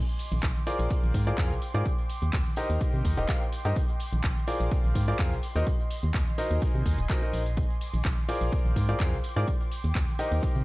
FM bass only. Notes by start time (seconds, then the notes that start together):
0.32 A#1
0.43 A#1
0.79 A#1
1.03 A#1
1.14 G#2
1.38 F2
1.51 A#1
1.75 G#2
2.22 D#2
2.33 D#2
2.70 D#2
2.94 C3
3.05 D#2
3.17 D#1
3.65 G2
4.13 A#1
4.24 A#1
4.60 A#1
4.84 A#1
4.95 G#2
5.19 F2
5.32 A#1
5.56 D#2
6.03 D#2
6.14 D#2
6.51 D#2
6.75 C3
6.86 D#2
6.98 D#1
7.33 A#1
7.94 A#1
8.05 A#1
8.41 A#1
8.65 A#1
8.76 G#2
9.00 F2
9.13 A#1
9.36 G#2
9.84 D#2
9.95 D#2
10.32 D#2
10.56 C3